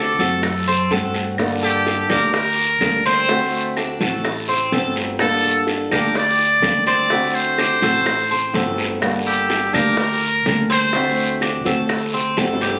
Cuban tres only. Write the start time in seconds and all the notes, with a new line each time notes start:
Already playing: D4
0.20 A4
0.68 C4
0.91 A4
1.63 A4
2.11 G4
3.06 C4
3.29 A3
3.77 D4
4.01 A4
4.49 C4
4.73 A4
5.44 A4
5.92 G4
6.87 C4
7.11 A3
7.59 D4
7.83 A4
8.31 C4
8.55 A4
9.27 A4
9.74 G4
10.70 C4
10.94 A3
11.42 D4
11.66 A4
12.14 C4
12.38 A4
12.62 G4